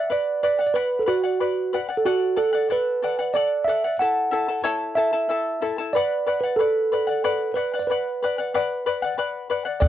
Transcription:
Already playing: charango F#5
0.10 charango B4 D5 F#5, tine electric piano D5
0.43 charango B4 D5 F#5, tine electric piano D5
0.59 charango D5 F#5
0.67 tine electric piano D5
0.74 tine electric piano B4, charango B4 D5 F#5
0.99 tine electric piano A4
1.06 tine electric piano F#4, charango B4 D5 F#5
1.24 charango D5 F#5
1.40 charango B4 D5 F#5
1.73 charango B4 D5 F#5
1.89 charango D5 F#5
1.97 tine electric piano A4
2.05 tine electric piano F#4, charango A4 D5 F#5
2.36 charango A4 D5 F#5, tine electric piano A4
2.53 charango D5 F#5
2.70 charango A4 D5 F#5, tine electric piano B4
3.03 charango A4 D5 F#5
3.19 charango D5 F#5
3.34 charango A4 D5 F#5, tine electric piano D5
3.64 charango A4, tine electric piano E5
3.69 charango D5 F#5
3.84 charango D5 F#5
3.99 charango E4 A4 E5 A5, tine electric piano F#5
4.31 charango E4 A4 E5 A5
4.48 charango E4 A4 A5
4.64 charango E4 A4 C#5 E5 A5
4.95 charango E4 A4 E5 A5, tine electric piano E5
5.13 charango E4 A4 A5
5.29 charango E4 A4 E5 A5
5.61 charango E4 A4 E5 A5
5.78 charango E4 A4 A5
5.93 charango B4 D5 F#5, tine electric piano D5
6.27 charango B4 D5 F#5
6.41 tine electric piano B4, charango F#5
6.45 charango D5
6.56 tine electric piano A4, charango B4 D5
6.61 charango F#5
6.92 charango B4 D5 F#5
7.07 charango D5 F#5
7.24 charango B4 D5 F#5
7.54 tine electric piano B4, charango B4 D5 F#5
7.74 charango D5 F#5
7.79 tine electric piano D5
7.87 tine electric piano B4, charango B4 D5
7.91 charango F#5
8.23 charango B4 D5 F#5
8.38 charango D5 F#5
8.54 charango B4 D5 F#5
8.86 charango B4 D5 F#5
9.02 charango D5 F#5
9.18 charango B4 D5 F#5
9.50 charango B4 D5 F#5
9.65 charango D5 F#5
9.80 charango A4 D5 F#5, tine electric piano D5, bombo rim, bombo low

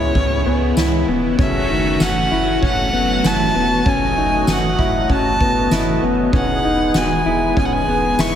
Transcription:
Already playing: analog synth bass C#2, analog synth pad C#3 G#3 B3 E4, clean electric guitar B3 C#4 E4 G#4, violin C#5
0.14 analog synth bass C#2, clean electric guitar C#3 E3 B3 C#4 G#4, kick, ride
0.45 analog synth bass C#2, clean electric guitar B3 C#4 G#4
0.77 analog synth bass C#2, clean electric guitar E3 B3 C#4 E4 G#4, snare, ride, tambourine
1.08 analog synth bass E1, clean electric guitar B3 C#4 G#4
1.38 analog synth bass F#1, clean electric guitar F#2 C#3 E3 A3 C#4 F#4, analog synth pad F#3 A3 C#4 F#4, violin E5, kick, ride
1.69 analog synth bass F#1, clean electric guitar D#3 A3 C#4 F#4
1.74 clean electric guitar E3
2.00 analog synth bass F#1, clean electric guitar E3 A3 C#4 F#4, violin F#5, snare, ride, tambourine
2.30 analog synth bass F#1, clean electric guitar E3 A3 C#4 E4 F#4
2.61 analog synth bass F#1, clean electric guitar F#2 C#3 E3 A3 C#4 F#4, violin F#5, kick, ride
2.93 analog synth bass F#1, clean electric guitar E3 A3 B3 C#4 F#4
3.23 analog synth bass F#1, clean electric guitar E3 A3 C#4 E4 F#4, violin A5, snare, ride, tambourine
3.54 analog synth bass E1, clean electric guitar E3 A3 B3 C#4 F#4
3.85 analog synth bass F#1, clean electric guitar F#2 C#3 E3 A3 C#4 F#4, analog synth pad D#5, violin G#5, kick, ride
4.16 analog synth bass F#1, clean electric guitar E3 A3 C#4 D#4 F#4
4.47 analog synth bass F#1, clean electric guitar E3 A3 C#4 F#4, snare, ride, tambourine
4.52 violin F#5
4.78 analog synth bass F#1, clean electric guitar E3 A3 C#4 E4 F#4, kick
5.08 analog synth bass F#1, clean electric guitar F#2 C#3 E3 A3 C#4 F#4, kick, ride
5.13 violin A5
5.39 analog synth bass F#1, clean electric guitar A3 B3 C#4 F#4, kick
5.43 clean electric guitar E3
5.70 analog synth bass F#1, clean electric guitar E3 A3 C#4 E4, snare, ride, tambourine
5.75 clean electric guitar F#4
6.01 analog synth bass F#1, clean electric guitar E3 A3 B3 C#4 F#4
6.32 analog synth bass E1, clean electric guitar E3 B3 C#4 D#4 G#4, analog synth pad E3 G#3 B3 G#4, kick, ride
6.36 violin F#5
6.63 analog synth bass E1, clean electric guitar D#4 G#4
6.67 clean electric guitar B3
6.93 analog synth bass E1, clean electric guitar E3 B3 D#4 F#4 G#4, violin G#5, snare, ride, tambourine
7.25 analog synth bass E1, clean electric guitar D#4 E4 G#4
7.29 clean electric guitar B3
7.56 analog synth bass E1, clean electric guitar E3 B3 C#4 D#4 G#4, violin G#5, kick, ride
7.65 violin F#5
7.73 violin G#5
7.87 analog synth bass E1, clean electric guitar B3 D#4 G#4
7.91 clean electric guitar B3
8.18 analog synth bass E1, clean electric guitar E3 B3 D#4 E4 G#4, violin C#6, snare, tambourine

